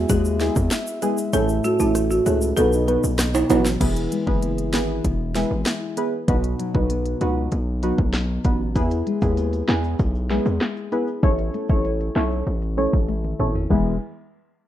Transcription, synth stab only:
0.40 0.57 G#3 medium
0.40 0.57 B3 medium
0.40 0.57 E4 medium
0.40 0.57 G#4 medium
1.02 1.18 G#3 medium
1.02 1.18 B3 medium
1.02 1.18 E4 medium
1.02 1.19 G#4 medium
1.33 1.76 A3 loud
1.33 1.76 C#4 medium
1.33 1.76 E4 medium
1.33 1.76 A4 loud
1.79 2.22 A3 medium
1.79 2.22 C#4 medium
1.79 2.22 E4 medium
1.79 2.22 A4 medium
2.26 2.54 A3 medium
2.26 2.54 C#4 medium
2.26 2.55 E4 medium
2.26 2.55 A4 medium
2.57 2.85 B3 medium
2.57 2.85 D#4 medium
2.57 2.86 F#4 medium
2.57 2.86 B4 loud
2.88 3.04 B3 medium
2.88 3.04 D#4 medium
2.88 3.04 F#4 medium
2.88 3.04 B4 medium
3.49 3.66 B3 medium
3.49 3.66 D#4 medium
3.49 3.66 F#4 medium
3.49 3.66 B4 medium
3.80 4.23 B3 medium
3.80 4.23 E4 medium
3.80 4.23 G#4 medium
3.80 4.24 B4 loud
4.27 4.70 B3 medium
4.27 4.70 E4 medium
4.27 4.70 G#4 medium
4.27 4.70 B4 medium
4.73 5.02 B3 medium
4.73 5.02 E4 medium
4.73 5.02 G#4 medium
4.73 5.02 B4 medium
5.35 5.51 B3 medium
5.35 5.51 E4 medium
5.35 5.52 G#4 medium
5.35 5.52 B4 medium
5.97 6.13 B3 medium
5.97 6.13 E4 medium
5.97 6.13 G#4 medium
5.97 6.13 B4 medium
6.28 6.71 B3 medium
6.28 6.71 D#4 medium
6.28 6.71 F#4 medium
6.28 6.71 B4 loud
6.74 7.17 B3 medium
6.74 7.17 D#4 medium
6.74 7.17 F#4 medium
6.74 7.18 B4 medium
7.21 7.49 B3 medium
7.21 7.49 D#4 medium
7.21 7.50 F#4 medium
7.21 7.50 B4 medium
7.83 7.99 B3 medium
7.83 7.99 D#4 medium
7.83 7.99 F#4 medium
7.83 7.99 B4 medium
8.45 8.61 B3 medium
8.45 8.61 D#4 medium
8.45 8.61 F#4 medium
8.45 8.61 B4 medium
8.76 9.18 B3 medium
8.76 9.18 E4 medium
8.76 9.18 G#4 medium
8.76 9.19 B4 loud
9.22 9.65 B3 medium
9.22 9.65 E4 medium
9.22 9.65 G#4 medium
9.22 9.65 B4 medium
9.68 9.97 B3 medium
9.68 9.97 E4 medium
9.68 9.97 G#4 medium
9.68 9.97 B4 medium
10.30 10.46 B3 medium
10.30 10.46 E4 medium
10.30 10.46 G#4 medium
10.30 10.46 B4 medium
10.92 11.08 B3 medium
10.92 11.08 E4 medium
10.92 11.08 G#4 medium
10.92 11.08 B4 medium
11.23 11.66 C#4 loud
11.23 11.66 E4 medium
11.23 11.66 A4 medium
11.23 11.66 C#5 loud
11.69 12.12 C#4 medium
11.69 12.12 E4 medium
11.69 12.12 A4 medium
11.69 12.12 C#5 medium
12.16 12.44 C#4 medium
12.16 12.44 E4 medium
12.16 12.44 A4 medium
12.16 12.44 C#5 medium
12.77 12.93 C#4 medium
12.77 12.94 E4 medium
12.77 12.94 A4 medium
12.77 12.94 C#5 medium
13.39 13.55 C#4 medium
13.39 13.56 E4 medium
13.39 13.56 A4 medium
13.39 13.56 C#5 medium
13.70 13.93 B3 medium
13.70 13.93 E4 medium
13.70 13.94 G#4 medium
13.70 13.94 B4 medium

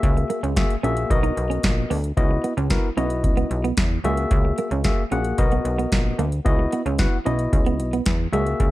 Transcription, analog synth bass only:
0.03 0.25 C#2 loud
0.43 0.65 C#2 medium
0.84 1.05 A#1 medium
1.10 1.32 B1 loud
1.37 1.59 B1 loud
1.64 1.85 A#1 loud
1.91 2.12 D2 medium
2.17 2.39 C#2 loud
2.57 2.79 C#2 loud
2.97 3.25 B1 medium
3.24 3.46 C#2 loud
3.51 3.73 B1 loud
3.78 3.99 E2 medium
4.04 4.26 C#2 loud
4.31 4.53 C#2 loud
4.71 4.93 C#2 medium
5.12 5.33 A#1 medium
5.39 5.60 B1 loud
5.65 5.87 B1 loud
5.92 6.14 A#1 medium
6.19 6.40 D2 medium
6.46 6.67 C#2 loud
6.86 7.08 C#2 loud
7.26 7.48 B1 medium
7.53 7.81 C#2 loud
7.79 8.01 B1 loud
8.06 8.28 E2 medium
8.32 8.54 C#2 medium
8.60 8.71 C#2 loud

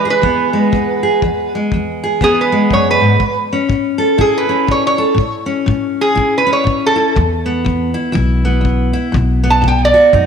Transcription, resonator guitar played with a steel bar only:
0.10 1.53 B4 medium
2.24 2.39 G#4 loud
2.41 2.71 B4 medium
2.73 2.88 C#5 medium
2.91 3.37 B4 medium
4.21 4.36 G#4 medium
4.38 4.69 B4 medium
4.71 4.86 C#5 medium
4.87 5.34 C#5 medium
6.01 6.33 G#4 loud
6.38 6.52 B4 medium
6.53 6.84 C#5 medium
6.86 7.17 A4 loud
9.50 9.65 A5 medium
9.68 9.82 G5 medium
9.85 10.26 D5 loud

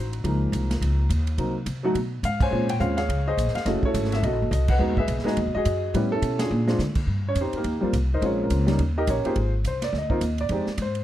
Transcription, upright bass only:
0.00 0.23 A1 medium
0.24 0.52 C#2 medium
0.52 0.80 C2 medium
0.81 1.09 C#2 medium
1.09 1.37 D#2 medium
1.38 1.65 C2 medium
1.66 1.94 C3 medium
1.95 2.23 B2 medium
2.23 2.51 G#2 medium
2.52 2.80 A#2 medium
2.81 3.08 D#2 medium
3.09 3.37 C#2 medium
3.37 3.53 A#1 medium
3.55 muted upright bass stroke soft
3.65 3.82 F#1 medium
3.83 muted upright bass stroke soft
3.94 4.22 G#1 medium
4.23 4.32 B1 medium
4.32 4.41 A1 medium
4.42 4.51 F#1 medium
4.51 4.79 C2 medium
4.79 4.89 E2 medium
4.89 4.98 D#2 medium
4.99 5.07 B1 medium
5.08 5.24 B1 medium
5.25 muted upright bass stroke soft
5.37 5.48 D#2 medium
5.46 5.55 B1 medium
5.56 5.65 G#1 medium
5.65 5.93 F#2 medium
5.94 6.21 A2 medium
6.22 6.50 B2 medium
6.51 6.78 A#2 medium
6.79 7.07 D3 medium
7.07 7.35 G2 medium
7.35 7.52 F2 medium
7.53 muted upright bass stroke soft
7.64 7.81 D#2 medium
7.83 muted upright bass stroke soft
7.93 8.21 C2 medium
8.22 8.49 A#1 medium
8.50 8.78 C#2 medium
8.79 9.07 D#2 medium
9.08 9.24 A#1 medium
9.25 muted upright bass stroke soft
9.36 9.64 G#1 medium
9.64 9.92 C2 medium
9.93 10.20 D2 medium
10.21 10.49 D#2 medium
10.49 10.66 F2 medium
10.67 muted upright bass stroke soft
10.78 11.04 G#2 medium

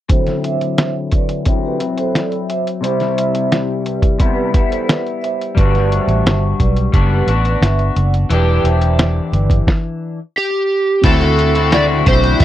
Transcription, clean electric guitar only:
0.09 1.45 D3 medium
0.09 1.45 F#3 medium
0.09 1.47 C4 medium
0.09 1.47 E4 medium
1.46 1.80 D3 medium
1.46 1.80 F#3 medium
1.46 1.79 C4 medium
1.46 1.78 E4 medium
1.79 2.82 F#3 soft
1.79 4.20 C4 soft
1.79 2.84 E4 medium
2.81 4.17 C3 medium
2.81 4.19 G3 medium
2.85 4.20 E4 medium
4.19 4.54 C3 medium
4.19 4.54 G3 medium
4.19 4.54 B3 medium
4.19 4.53 E4 medium
4.54 5.54 G3 soft
4.54 6.93 B3 medium
4.54 5.57 E4 medium
5.55 6.92 G3 medium
5.55 6.94 D4 medium
5.59 6.93 F#4 medium
6.92 7.27 G3 medium
6.92 7.28 B3 medium
6.92 7.28 D4 medium
6.92 7.27 F#4 medium
7.28 10.19 B3 soft
7.28 8.32 D4 soft
7.28 8.31 F#4 medium
8.30 10.19 E3 medium
8.30 10.19 D4 medium
8.30 9.69 G4 medium
11.04 11.21 D3 medium
11.04 11.21 C4 medium
11.04 11.21 E4 medium
11.04 11.19 F#4 medium
11.20 11.56 C4 soft
11.20 11.55 E4 medium
11.20 11.53 F#4 medium
11.55 11.70 C4 soft
11.55 11.71 E4 soft
11.55 11.71 F#4 medium
11.71 12.04 D3 medium
11.71 12.05 C4 medium
11.71 12.06 E4 medium
11.71 12.06 F#4 medium
12.05 12.45 D3 medium
12.05 12.45 C4 medium
12.05 12.45 E4 medium
12.05 12.45 F#4 medium

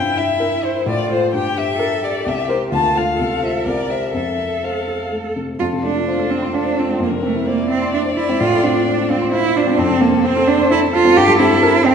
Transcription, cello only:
0.00 0.89 E4 medium
0.87 1.33 F4 medium
1.33 1.78 G4 medium
1.78 2.24 A4 medium
2.24 2.70 G4 medium
2.70 3.17 F4 soft
3.18 3.67 A4 soft
3.65 4.14 A#4 soft
4.15 5.35 A4 soft
5.60 5.68 F4 medium
5.83 6.31 D4 medium
6.30 6.55 C4 medium
6.54 6.81 D4 medium
6.79 7.02 C4 medium
7.02 7.10 A#3 medium
7.24 7.47 A3 medium
7.47 7.69 A#3 medium
7.70 7.93 C4 medium
7.93 8.01 D4 medium
8.16 8.41 E4 medium
8.40 8.65 F4 medium
8.64 9.12 D4 medium
9.10 9.31 C4 medium
9.32 9.58 E4 medium
9.56 9.79 D4 medium
9.78 10.02 C4 medium
10.01 10.27 A#3 medium
10.25 10.49 C4 medium
10.47 10.70 D4 medium
10.71 10.79 E4 medium
10.94 11.18 F4 medium
11.17 11.38 G4 loud
11.38 11.86 E4 medium
11.85 11.95 C4 loud

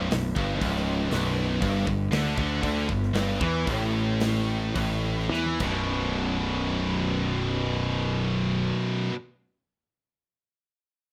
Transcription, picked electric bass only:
0.10 0.34 B0 medium
0.37 0.60 G1 loud
0.62 1.08 C#1 medium
1.12 1.58 B0 medium
1.62 1.85 G1 loud
1.87 2.10 G1 medium
2.12 2.35 D2 medium
2.38 2.61 D2 loud
2.63 2.86 D2 loud
2.89 3.13 G1 medium
3.13 3.38 G1 loud
3.41 3.65 E2 loud
3.67 4.71 A1 loud
4.76 5.28 A1 medium
5.31 5.57 E2 medium
5.61 8.71 B0 loud

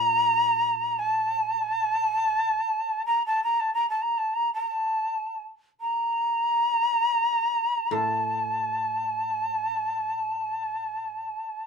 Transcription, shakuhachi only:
0.00 1.00 A#5 loud
0.99 3.05 A5 medium
3.06 3.25 A#5 medium
3.26 3.43 A5 medium
3.43 3.61 A#5 medium
3.59 3.73 A5 medium
3.74 3.89 A#5 medium
3.89 4.03 A5 medium
4.02 4.19 A#5 medium
4.18 4.35 A5 medium
4.34 4.53 A#5 medium
4.54 4.67 A#5 medium
4.67 5.44 A5 medium
5.80 7.93 A#5 medium
7.92 11.67 A5 medium

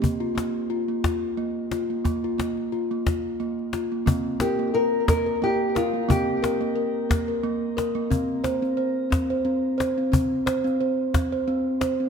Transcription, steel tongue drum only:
0.02 0.21 A#3 medium
0.20 0.36 F4 medium
0.35 0.70 A#3 medium
0.70 0.89 F4 medium
0.88 1.04 A#3 medium
1.04 1.38 F4 medium
1.37 1.72 A#3 medium
1.72 1.90 F4 medium
1.90 2.03 A#3 medium
2.05 2.24 A#3 medium
2.24 2.39 F4 medium
2.38 2.72 A#3 medium
2.72 2.91 F4 medium
2.91 3.06 A#3 medium
3.06 3.40 F4 medium
3.40 3.74 A#3 medium
3.73 3.92 F4 medium
3.92 4.05 A#3 medium
4.06 4.41 A#3 medium
4.06 6.06 C4 medium
4.41 4.60 A#4 medium
4.59 4.75 A#3 medium
4.74 5.08 A#4 medium
5.08 5.27 A#3 medium
5.26 5.42 A#4 medium
5.42 5.76 A#3 medium
5.75 5.94 A#4 medium
5.94 6.07 A#3 medium
6.09 6.43 A#3 medium
6.09 8.07 C4 medium
6.42 6.61 A#4 medium
6.61 6.76 A#3 medium
6.76 7.10 A#4 medium
7.10 7.29 A#3 medium
7.28 7.44 A#4 medium
7.43 7.77 A#3 medium
7.77 7.96 A#4 medium
7.95 8.11 A#3 medium
8.11 8.45 C4 medium
8.44 8.63 C5 medium
8.62 8.78 C4 medium
8.77 9.12 C5 medium
9.10 9.30 C4 medium
9.30 9.46 C5 medium
9.45 9.79 C4 medium
9.78 9.97 C5 medium
9.98 10.11 C4 medium
10.12 10.63 C4 medium
10.46 10.65 C5 medium
10.64 10.80 C4 medium
10.81 11.14 C5 medium
11.14 11.33 C4 medium
11.32 11.48 C5 medium
11.48 11.82 C4 medium
11.81 12.00 C5 medium
12.00 12.09 C4 medium

